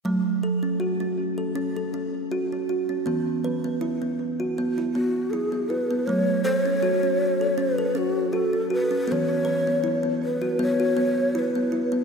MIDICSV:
0, 0, Header, 1, 3, 480
1, 0, Start_track
1, 0, Key_signature, 3, "minor"
1, 0, Tempo, 753769
1, 30, Time_signature, 4, 2, 24, 8
1, 7668, End_track
2, 0, Start_track
2, 0, Title_t, "Shakuhachi"
2, 0, Program_c, 0, 77
2, 3149, Note_on_c, 0, 66, 62
2, 3378, Note_on_c, 0, 69, 59
2, 3387, Note_off_c, 0, 66, 0
2, 3402, Note_on_c, 0, 68, 64
2, 3408, Note_off_c, 0, 69, 0
2, 3626, Note_on_c, 0, 71, 74
2, 3635, Note_off_c, 0, 68, 0
2, 3861, Note_on_c, 0, 73, 82
2, 3870, Note_off_c, 0, 71, 0
2, 4096, Note_off_c, 0, 73, 0
2, 4100, Note_on_c, 0, 72, 81
2, 4189, Note_off_c, 0, 72, 0
2, 4189, Note_on_c, 0, 73, 81
2, 4834, Note_on_c, 0, 71, 74
2, 4844, Note_off_c, 0, 73, 0
2, 5076, Note_on_c, 0, 66, 70
2, 5086, Note_off_c, 0, 71, 0
2, 5303, Note_on_c, 0, 69, 69
2, 5313, Note_off_c, 0, 66, 0
2, 5547, Note_off_c, 0, 69, 0
2, 5557, Note_on_c, 0, 71, 76
2, 5806, Note_on_c, 0, 73, 80
2, 5815, Note_off_c, 0, 71, 0
2, 6351, Note_off_c, 0, 73, 0
2, 6522, Note_on_c, 0, 71, 69
2, 6740, Note_off_c, 0, 71, 0
2, 6763, Note_on_c, 0, 73, 77
2, 7252, Note_on_c, 0, 71, 64
2, 7261, Note_off_c, 0, 73, 0
2, 7612, Note_off_c, 0, 71, 0
2, 7668, End_track
3, 0, Start_track
3, 0, Title_t, "Kalimba"
3, 0, Program_c, 1, 108
3, 32, Note_on_c, 1, 54, 60
3, 35, Note_on_c, 1, 57, 59
3, 273, Note_off_c, 1, 57, 0
3, 276, Note_on_c, 1, 69, 52
3, 399, Note_on_c, 1, 61, 51
3, 403, Note_off_c, 1, 69, 0
3, 509, Note_on_c, 1, 66, 55
3, 510, Note_off_c, 1, 61, 0
3, 639, Note_off_c, 1, 66, 0
3, 639, Note_on_c, 1, 61, 51
3, 877, Note_on_c, 1, 69, 51
3, 880, Note_off_c, 1, 61, 0
3, 989, Note_off_c, 1, 69, 0
3, 990, Note_on_c, 1, 61, 63
3, 1121, Note_off_c, 1, 61, 0
3, 1124, Note_on_c, 1, 69, 50
3, 1233, Note_off_c, 1, 69, 0
3, 1235, Note_on_c, 1, 61, 56
3, 1473, Note_off_c, 1, 61, 0
3, 1474, Note_on_c, 1, 66, 57
3, 1603, Note_off_c, 1, 66, 0
3, 1608, Note_on_c, 1, 61, 46
3, 1715, Note_off_c, 1, 61, 0
3, 1715, Note_on_c, 1, 66, 48
3, 1841, Note_on_c, 1, 61, 51
3, 1843, Note_off_c, 1, 66, 0
3, 1927, Note_off_c, 1, 54, 0
3, 1947, Note_on_c, 1, 59, 60
3, 1952, Note_off_c, 1, 61, 0
3, 1954, Note_on_c, 1, 52, 59
3, 2190, Note_off_c, 1, 59, 0
3, 2194, Note_on_c, 1, 71, 53
3, 2320, Note_on_c, 1, 59, 52
3, 2323, Note_off_c, 1, 71, 0
3, 2427, Note_on_c, 1, 64, 57
3, 2431, Note_off_c, 1, 59, 0
3, 2558, Note_on_c, 1, 59, 52
3, 2559, Note_off_c, 1, 64, 0
3, 2800, Note_off_c, 1, 59, 0
3, 2801, Note_on_c, 1, 66, 53
3, 2911, Note_off_c, 1, 66, 0
3, 2918, Note_on_c, 1, 59, 60
3, 3044, Note_on_c, 1, 64, 48
3, 3045, Note_off_c, 1, 59, 0
3, 3153, Note_off_c, 1, 64, 0
3, 3153, Note_on_c, 1, 59, 54
3, 3393, Note_off_c, 1, 59, 0
3, 3395, Note_on_c, 1, 64, 55
3, 3516, Note_on_c, 1, 59, 49
3, 3523, Note_off_c, 1, 64, 0
3, 3629, Note_off_c, 1, 59, 0
3, 3630, Note_on_c, 1, 64, 52
3, 3761, Note_off_c, 1, 64, 0
3, 3761, Note_on_c, 1, 59, 53
3, 3848, Note_off_c, 1, 52, 0
3, 3868, Note_on_c, 1, 57, 62
3, 3871, Note_off_c, 1, 59, 0
3, 3879, Note_on_c, 1, 54, 60
3, 4106, Note_on_c, 1, 69, 58
3, 4110, Note_off_c, 1, 57, 0
3, 4238, Note_on_c, 1, 61, 56
3, 4239, Note_off_c, 1, 69, 0
3, 4347, Note_on_c, 1, 66, 63
3, 4350, Note_off_c, 1, 61, 0
3, 4478, Note_on_c, 1, 61, 55
3, 4479, Note_off_c, 1, 66, 0
3, 4719, Note_on_c, 1, 69, 53
3, 4720, Note_off_c, 1, 61, 0
3, 4825, Note_on_c, 1, 61, 70
3, 4830, Note_off_c, 1, 69, 0
3, 4957, Note_on_c, 1, 69, 56
3, 4958, Note_off_c, 1, 61, 0
3, 5063, Note_on_c, 1, 61, 61
3, 5069, Note_off_c, 1, 69, 0
3, 5304, Note_on_c, 1, 66, 62
3, 5307, Note_off_c, 1, 61, 0
3, 5434, Note_on_c, 1, 61, 51
3, 5437, Note_off_c, 1, 66, 0
3, 5542, Note_on_c, 1, 66, 58
3, 5547, Note_off_c, 1, 61, 0
3, 5673, Note_on_c, 1, 61, 57
3, 5677, Note_off_c, 1, 66, 0
3, 5769, Note_off_c, 1, 54, 0
3, 5779, Note_on_c, 1, 59, 66
3, 5787, Note_off_c, 1, 61, 0
3, 5806, Note_on_c, 1, 52, 68
3, 6017, Note_on_c, 1, 71, 62
3, 6025, Note_off_c, 1, 59, 0
3, 6154, Note_off_c, 1, 71, 0
3, 6160, Note_on_c, 1, 59, 56
3, 6264, Note_on_c, 1, 64, 62
3, 6270, Note_off_c, 1, 59, 0
3, 6389, Note_on_c, 1, 59, 54
3, 6397, Note_off_c, 1, 64, 0
3, 6633, Note_on_c, 1, 66, 57
3, 6635, Note_off_c, 1, 59, 0
3, 6745, Note_on_c, 1, 59, 76
3, 6747, Note_off_c, 1, 66, 0
3, 6876, Note_on_c, 1, 66, 56
3, 6878, Note_off_c, 1, 59, 0
3, 6984, Note_on_c, 1, 59, 64
3, 6989, Note_off_c, 1, 66, 0
3, 7228, Note_off_c, 1, 59, 0
3, 7228, Note_on_c, 1, 64, 61
3, 7358, Note_on_c, 1, 59, 55
3, 7360, Note_off_c, 1, 64, 0
3, 7464, Note_on_c, 1, 64, 57
3, 7470, Note_off_c, 1, 59, 0
3, 7590, Note_on_c, 1, 59, 59
3, 7598, Note_off_c, 1, 64, 0
3, 7668, Note_off_c, 1, 52, 0
3, 7668, Note_off_c, 1, 59, 0
3, 7668, End_track
0, 0, End_of_file